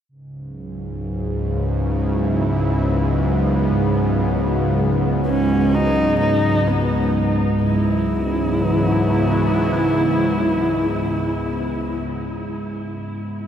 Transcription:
0.09 7.63 C#2 medium
0.09 7.63 G#2 medium
0.09 7.64 C#3 medium
0.26 7.64 F#3 medium
1.78 7.63 B3 medium
1.78 3.85 E4 medium
3.71 9.40 G#2 soft
3.87 7.64 G#2 medium
4.87 10.57 B3 medium
5.27 5.76 C#4 medium
5.54 7.64 D#4 medium
5.74 6.19 D#4 loud
6.20 6.69 D#4 medium
6.67 7.39 B3 medium
7.63 12.02 C#2 medium
7.63 12.01 G#2 medium
7.63 12.03 C#3 medium
7.63 12.01 E4 medium
7.79 12.17 F#3 medium
7.93 12.19 B3 medium
8.06 12.18 E3 medium

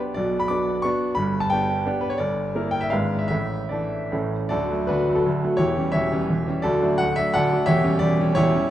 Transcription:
0.00 0.14 B3 medium
0.00 0.14 D4 medium
0.00 0.14 G4 medium
0.14 0.50 B1 medium
0.14 0.49 B2 medium
0.14 0.41 D5 medium
0.40 0.49 B5 medium
0.48 0.82 B3 medium
0.48 0.82 D4 medium
0.48 0.82 F#4 medium
0.48 0.84 D6 medium
0.82 1.14 B3 medium
0.82 1.15 D4 medium
0.82 1.15 F#4 medium
0.82 1.17 C#6 loud
1.15 1.50 G1 medium
1.15 1.50 G2 medium
1.15 1.41 B5 loud
1.40 1.50 A5 medium
1.50 1.83 B3 medium
1.50 1.83 D4 medium
1.50 1.84 G4 medium
1.50 2.02 G5 loud
1.86 2.16 B3 medium
1.86 2.17 D4 medium
1.86 2.17 G4 medium
2.01 2.10 B4 medium
2.10 2.19 C#5 medium
2.18 2.54 G1 medium
2.18 2.54 G2 medium
2.18 2.73 D5 medium
2.55 2.89 A#3 medium
2.55 2.89 E4 medium
2.55 2.89 A#4 medium
2.71 2.82 G5 loud
2.81 2.91 E5 medium
2.90 3.30 G#1 medium
2.90 3.30 G#2 medium
2.90 3.27 G#3 medium
2.90 3.28 D4 soft
2.90 3.28 B4 soft
2.90 3.20 F5 medium
3.19 3.26 E5 medium
3.28 3.71 A1 medium
3.28 3.71 A2 medium
3.28 3.71 E5 medium
3.69 4.09 E3 soft
3.69 4.09 D4 soft
3.69 4.09 A4 medium
3.69 4.11 D5 medium
4.12 4.50 A1 medium
4.12 4.50 A2 medium
4.12 4.48 E3 soft
4.12 4.48 C#4 soft
4.12 4.48 A4 soft
4.49 4.70 D1 medium
4.49 4.70 D2 medium
4.49 4.69 F#4 medium
4.49 4.86 A4 medium
4.49 4.88 D5 medium
4.70 4.87 F#3 soft
4.70 4.88 A3 medium
4.70 4.87 F#4 medium
4.87 5.08 D1 medium
4.87 5.08 D2 medium
4.87 5.15 D4 medium
4.87 5.08 F#4 medium
4.87 5.16 B4 medium
5.08 5.24 F#3 medium
5.08 5.25 A3 medium
5.08 5.15 F#4 medium
5.15 5.57 D4 medium
5.15 5.42 F#4 medium
5.15 5.59 A4 medium
5.26 5.43 D1 medium
5.26 5.43 D2 medium
5.44 5.59 F#3 soft
5.44 5.59 A3 medium
5.44 5.59 F#4 medium
5.57 5.76 E1 medium
5.57 5.76 E2 medium
5.57 5.92 E4 medium
5.57 5.91 G4 medium
5.57 5.91 C#5 medium
5.77 5.93 E3 medium
5.77 5.93 G3 medium
5.77 5.94 C#4 medium
5.92 6.12 E1 medium
5.92 6.12 E2 medium
5.92 6.59 G4 medium
5.92 6.59 C#5 medium
5.92 6.63 E5 loud
6.13 6.28 E3 medium
6.13 6.28 G3 medium
6.13 6.29 C#4 medium
6.30 6.47 E1 medium
6.30 6.47 E2 medium
6.47 6.63 E3 medium
6.47 6.63 G3 medium
6.47 6.63 C#4 medium
6.62 6.81 D1 medium
6.62 6.81 D2 medium
6.62 6.97 F#4 medium
6.62 6.97 A4 medium
6.62 6.99 D5 loud
6.82 6.98 F#3 medium
6.82 6.99 A3 medium
6.82 6.99 D4 medium
6.98 7.18 D1 medium
6.98 7.18 D2 medium
6.98 7.17 F#5 loud
7.16 7.34 F#3 medium
7.16 7.34 A3 medium
7.16 7.34 D4 medium
7.16 7.34 E5 loud
7.34 7.52 D1 medium
7.34 7.52 D2 medium
7.34 7.66 A4 medium
7.34 7.66 D5 medium
7.34 7.67 F#5 loud
7.52 7.67 F#3 medium
7.52 7.67 A3 medium
7.52 7.67 D4 medium
7.66 7.84 E1 medium
7.66 7.84 E2 medium
7.66 7.99 G4 medium
7.66 7.99 C#5 medium
7.66 8.01 E5 loud
7.84 8.00 G3 medium
7.84 8.00 C#4 medium
7.99 8.20 E1 medium
7.99 8.20 E2 medium
7.99 8.37 D5 loud
8.20 8.36 G3 medium
8.20 8.37 C#4 medium
8.35 8.54 E1 medium
8.35 8.54 E2 medium
8.35 8.67 E4 medium
8.35 8.67 G4 medium
8.35 8.69 C#5 loud
8.55 8.69 G3 medium
8.55 8.69 C#4 medium

